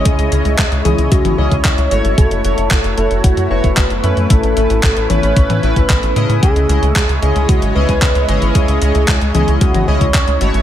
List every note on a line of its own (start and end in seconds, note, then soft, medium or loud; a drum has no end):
0.00 0.29 C#3 medium
0.00 2.14 G#3 medium
0.00 0.29 C#4 medium
0.00 0.29 E4 medium
0.00 10.62 E4 medium
0.00 0.29 G#4 medium
0.00 4.26 C#5 medium
0.00 0.29 D#5 loud
0.00 2.14 D#5 medium
0.05 0.16 C#2 loud
0.05 0.84 G#4 loud
0.05 kick loud
0.05 closed hi-hat medium
0.19 0.29 C#2 medium
0.19 closed hi-hat soft
0.32 0.43 C#2 medium
0.32 0.48 C#3 medium
0.32 0.48 C#4 medium
0.32 0.48 E4 medium
0.32 0.48 G#4 medium
0.32 0.48 D#5 medium
0.32 closed hi-hat medium
0.45 0.56 C#2 medium
0.45 closed hi-hat soft
0.59 0.69 C#2 loud
0.59 kick loud
0.59 clap loud
0.59 closed hi-hat medium
0.72 0.83 C#2 medium
0.72 closed hi-hat soft
0.85 0.96 C#2 medium
0.85 1.35 C#3 medium
0.85 1.35 C#4 medium
0.85 1.35 E4 medium
0.85 1.13 G#4 medium
0.85 1.35 G#4 medium
0.85 1.35 D#5 medium
0.85 closed hi-hat medium
0.85 high tom medium
0.98 1.09 C#2 medium
0.98 closed hi-hat soft
1.11 1.22 C#2 loud
1.11 1.39 F#4 medium
1.11 kick loud
1.11 closed hi-hat medium
1.25 1.36 G#1 medium
1.25 closed hi-hat soft
1.25 high tom medium
1.38 1.49 C#2 medium
1.38 1.54 C#3 medium
1.38 1.54 C#4 medium
1.38 1.54 E4 medium
1.38 1.54 G#4 medium
1.38 2.17 C#5 loud
1.38 1.54 D#5 loud
1.52 1.62 C#2 medium
1.52 kick medium
1.52 closed hi-hat soft
1.65 1.76 C#2 loud
1.65 kick loud
1.65 clap loud
1.65 closed hi-hat medium
1.78 1.89 C#2 medium
1.78 closed hi-hat soft
1.91 2.02 G#1 loud
1.91 2.41 A3 loud
1.91 2.41 E4 medium
1.91 2.41 F#4 medium
1.91 2.41 C#5 loud
1.91 closed hi-hat medium
2.04 2.15 G#1 medium
2.04 closed hi-hat soft
2.18 2.29 F#1 medium
2.18 6.39 A3 medium
2.18 4.28 F#4 medium
2.18 2.93 A4 loud
2.18 kick loud
2.18 closed hi-hat medium
2.31 2.42 F#1 medium
2.31 closed hi-hat soft
2.44 2.55 F#1 medium
2.44 2.61 A3 medium
2.44 2.61 E4 medium
2.44 2.61 F#4 medium
2.44 2.61 C#5 medium
2.44 closed hi-hat medium
2.58 2.68 F#1 medium
2.58 closed hi-hat soft
2.71 2.82 F#1 loud
2.71 kick loud
2.71 clap loud
2.71 closed hi-hat medium
2.84 2.95 F#1 medium
2.84 closed hi-hat soft
2.97 3.08 F#1 medium
2.97 3.47 A3 medium
2.97 3.47 E4 medium
2.97 3.47 F#4 medium
2.97 3.25 A4 medium
2.97 3.47 C#5 medium
2.97 closed hi-hat medium
3.11 3.21 F#1 medium
3.11 closed hi-hat soft
3.24 3.35 F#1 loud
3.24 3.52 F#4 medium
3.24 kick loud
3.24 closed hi-hat medium
3.37 3.48 F#2 medium
3.37 closed hi-hat soft
3.50 3.61 F#1 loud
3.50 3.67 A3 loud
3.50 3.67 E4 medium
3.50 3.67 F#4 medium
3.50 4.31 B4 loud
3.50 3.67 C#5 loud
3.64 3.75 F#1 medium
3.64 kick medium
3.64 closed hi-hat soft
3.77 3.88 F#1 loud
3.77 kick loud
3.77 clap loud
3.77 closed hi-hat medium
3.90 4.01 F#1 medium
3.90 closed hi-hat soft
4.03 4.14 F#2 loud
4.03 4.54 A2 loud
4.03 4.54 A3 medium
4.03 4.54 C#4 medium
4.03 4.54 E4 medium
4.03 4.54 B4 loud
4.03 closed hi-hat medium
4.17 4.28 F#2 medium
4.17 closed hi-hat soft
4.30 4.41 A1 medium
4.30 6.41 C#4 medium
4.30 5.11 A4 loud
4.30 6.41 B4 medium
4.30 kick loud
4.30 closed hi-hat medium
4.43 4.54 A1 medium
4.43 closed hi-hat soft
4.57 4.67 A1 medium
4.57 4.73 A2 medium
4.57 4.73 A3 medium
4.57 4.73 C#4 medium
4.57 4.73 E4 medium
4.57 4.73 B4 medium
4.57 closed hi-hat medium
4.70 4.81 A1 medium
4.70 closed hi-hat soft
4.83 4.94 A1 loud
4.83 kick loud
4.83 clap loud
4.83 closed hi-hat medium
4.97 5.07 A1 medium
4.97 closed hi-hat soft
5.10 5.21 A1 medium
5.10 5.60 A2 medium
5.10 5.60 A3 medium
5.10 5.60 C#4 medium
5.10 5.60 E4 medium
5.10 5.60 B4 medium
5.10 5.64 C#5 loud
5.10 closed hi-hat medium
5.10 high tom medium
5.23 5.34 A1 medium
5.23 closed hi-hat soft
5.36 5.47 A1 loud
5.36 kick loud
5.36 closed hi-hat medium
5.50 5.60 A2 medium
5.50 closed hi-hat soft
5.50 high tom medium
5.63 5.74 A1 loud
5.63 5.79 A2 loud
5.63 5.79 A3 medium
5.63 5.79 C#4 medium
5.63 5.79 E4 medium
5.63 6.42 B4 loud
5.63 5.79 B4 loud
5.63 closed hi-hat soft
5.76 5.87 A1 medium
5.76 kick medium
5.76 closed hi-hat soft
5.90 6.00 A1 loud
5.90 kick loud
5.90 clap loud
5.90 closed hi-hat medium
6.03 6.14 A1 medium
6.03 closed hi-hat soft
6.16 6.27 A2 medium
6.16 6.66 C#3 loud
6.16 6.66 C#4 medium
6.16 6.66 E4 medium
6.16 6.66 G#4 medium
6.16 6.66 D#5 loud
6.16 closed hi-hat medium
6.29 6.40 A2 medium
6.29 closed hi-hat soft
6.42 6.53 C#2 medium
6.42 10.62 G#3 medium
6.42 7.18 G#4 loud
6.42 10.62 C#5 medium
6.42 10.62 D#5 medium
6.42 kick loud
6.42 closed hi-hat medium
6.56 6.67 C#2 medium
6.56 closed hi-hat soft
6.69 6.80 C#2 medium
6.69 6.85 C#3 medium
6.69 6.85 C#4 medium
6.69 6.85 E4 medium
6.69 6.85 G#4 medium
6.69 6.85 D#5 medium
6.69 closed hi-hat medium
6.82 6.93 C#2 medium
6.82 closed hi-hat soft
6.96 7.07 C#2 loud
6.96 kick loud
6.96 clap loud
6.96 closed hi-hat medium
7.09 7.20 C#2 medium
7.09 closed hi-hat soft
7.22 7.33 C#2 medium
7.22 7.72 C#3 medium
7.22 7.72 C#4 medium
7.22 7.72 E4 medium
7.22 7.50 G#4 loud
7.22 7.72 G#4 medium
7.22 7.72 D#5 medium
7.22 closed hi-hat medium
7.36 7.46 C#2 medium
7.36 closed hi-hat soft
7.49 7.60 C#2 loud
7.49 7.77 F#4 loud
7.49 kick loud
7.49 closed hi-hat medium
7.62 7.73 G#1 medium
7.62 closed hi-hat soft
7.75 7.86 C#2 medium
7.75 7.92 C#3 medium
7.75 7.92 C#4 medium
7.75 7.92 E4 medium
7.75 7.92 G#4 medium
7.75 8.56 B4 loud
7.75 7.92 D#5 loud
7.89 7.99 C#2 medium
7.89 kick medium
7.89 closed hi-hat soft
8.02 8.13 C#2 loud
8.02 kick loud
8.02 clap loud
8.02 closed hi-hat medium
8.15 8.26 C#2 medium
8.15 closed hi-hat soft
8.29 8.39 G#1 medium
8.29 8.78 C#3 loud
8.29 8.78 C#4 medium
8.29 8.78 E4 medium
8.29 8.78 G#4 medium
8.29 8.78 D#5 loud
8.29 closed hi-hat medium
8.42 8.52 G#1 medium
8.42 closed hi-hat soft
8.55 8.66 C#2 medium
8.55 9.34 G#4 loud
8.55 kick loud
8.55 closed hi-hat medium
8.68 8.79 C#2 medium
8.68 closed hi-hat soft
8.82 8.92 C#2 medium
8.82 8.98 C#3 medium
8.82 8.98 C#4 medium
8.82 8.98 E4 medium
8.82 8.98 G#4 medium
8.82 8.98 D#5 medium
8.82 closed hi-hat medium
8.95 9.06 C#2 medium
8.95 closed hi-hat soft
9.08 9.19 C#2 loud
9.08 kick loud
9.08 clap loud
9.08 closed hi-hat medium
9.21 9.32 C#2 medium
9.21 closed hi-hat soft
9.34 9.45 C#2 loud
9.34 9.85 C#3 medium
9.34 9.85 C#4 medium
9.34 9.85 E4 medium
9.34 9.63 G#4 loud
9.34 9.85 G#4 medium
9.34 9.85 D#5 medium
9.34 closed hi-hat medium
9.34 high tom medium
9.48 9.59 C#2 medium
9.48 closed hi-hat soft
9.61 9.72 C#2 loud
9.61 9.89 F#4 loud
9.61 kick loud
9.61 closed hi-hat medium
9.74 9.85 G#1 medium
9.74 closed hi-hat soft
9.74 high tom medium
9.87 9.99 C#2 medium
9.87 10.04 C#3 loud
9.87 10.04 C#4 medium
9.87 10.04 E4 medium
9.87 10.04 G#4 medium
9.87 10.62 C#5 loud
9.87 10.04 D#5 loud
10.01 10.12 C#2 medium
10.01 kick medium
10.01 closed hi-hat soft
10.14 10.25 C#2 loud
10.14 kick loud
10.14 clap loud
10.14 closed hi-hat medium
10.28 10.38 C#2 medium
10.28 closed hi-hat soft
10.41 10.52 G#1 medium
10.41 10.62 A3 loud
10.41 10.62 E4 medium
10.41 10.62 F#4 medium
10.41 10.62 C#5 loud
10.41 closed hi-hat medium
10.54 10.62 G#1 medium
10.54 closed hi-hat soft